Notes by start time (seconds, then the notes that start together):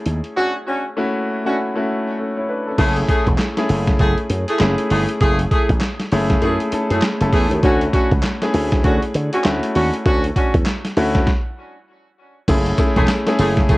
Already playing: A3 C#4 E4 G#4 A4
0.06 D#2, closed hi-hat
0.24 closed hi-hat
0.35 C#4 D4 F#4
0.66 C#4 D4 F#4
0.97 A3 C#4 E4 F#4
1.45 A3 C#4 D4 E4 F#4
1.76 A3 C#4 E4 F#4
2.19 C#4 A4
2.37 E4 C#5
2.49 D4 B4
2.67 C#4 A4
2.78 F#1 A3 C#4 E4 G#4, kick, closed hi-hat, crash
2.96 closed hi-hat
3.08 A3 E4 G#4, kick, closed hi-hat
3.27 E1, kick, closed hi-hat
3.38 snare, clap, closed hi-hat
3.57 A3 C#4 E4 G#4, snare, closed hi-hat
3.69 F#1, open hi-hat
3.87 kick, snare, closed hi-hat
3.99 F#1 A3 E4 G#4, kick, closed hi-hat
4.18 closed hi-hat
4.30 F#2, closed hi-hat
4.48 A3 E4 G#4, closed hi-hat
4.60 F#1 A3 C#4 E4 G#4, snare, clap, closed hi-hat
4.78 closed hi-hat
4.90 G1 A3 E4 G#4, open hi-hat
5.09 closed hi-hat
5.20 F#1 A3 E4 G#4, kick, closed hi-hat
5.39 closed hi-hat
5.51 A3 E4 G#4, kick, closed hi-hat
5.69 A1, kick, closed hi-hat
5.81 snare, clap, closed hi-hat
6.00 snare, closed hi-hat
6.12 F#1 A3 C#4 E4 G#4, open hi-hat
6.30 kick, snare, closed hi-hat
6.42 F#2 A3 C#4 E4 G#4, closed hi-hat
6.60 closed hi-hat
6.72 A3 C#4 E4 A4, muted slap bass stroke, closed hi-hat
6.90 F#2 A3 E4 G#4, closed hi-hat
7.02 snare, clap, closed hi-hat
7.21 F#1 A3 C#4 E4 A4, closed hi-hat
7.33 E2 A3 E4 G#4, kick, open hi-hat
7.51 D#2, closed hi-hat
7.63 D2 A3 C#4 D4 E4 F#4, kick, closed hi-hat
7.81 closed hi-hat
7.93 C#4 D4 F#4, kick, closed hi-hat
8.11 C#2, kick, closed hi-hat
8.23 snare, clap, closed hi-hat
8.42 A3 C#4 E4 G#4, snare, closed hi-hat
8.54 D2, open hi-hat
8.72 kick, snare, closed hi-hat
8.84 D2 C#4 D4 F#4, kick, closed hi-hat
9.03 closed hi-hat
9.14 D3, closed hi-hat
9.32 C#4 D4 F#4, closed hi-hat
9.44 D2 A3 C#4 E4 F#4, snare, clap, closed hi-hat
9.63 closed hi-hat
9.75 D#2 C#4 D4 F#4, open hi-hat
9.93 closed hi-hat
10.05 D2 C#4 D4 F#4, kick, closed hi-hat
10.24 closed hi-hat
10.36 C#4 D4 F#4, kick, closed hi-hat
10.54 E2, kick, closed hi-hat
10.66 snare, clap, closed hi-hat
10.85 snare, closed hi-hat
10.97 D2 A3 C#4 E4 F#4, open hi-hat
11.15 kick, snare, closed hi-hat
11.27 kick, snare
12.48 F#1 A3 C#4 E4 G#4, kick, closed hi-hat, crash, tambourine
12.66 closed hi-hat
12.78 A3 C#4 E4 G#4, kick, closed hi-hat, tambourine
12.96 E1 A3 E4 G#4, kick, closed hi-hat
13.08 snare, clap, closed hi-hat, tambourine
13.27 A3 C#4 E4 G#4, snare, closed hi-hat
13.39 F#1 A3 E4 G#4, open hi-hat, tambourine
13.57 kick, snare, closed hi-hat
13.69 F#1 A3 E4 G#4, kick, closed hi-hat, tambourine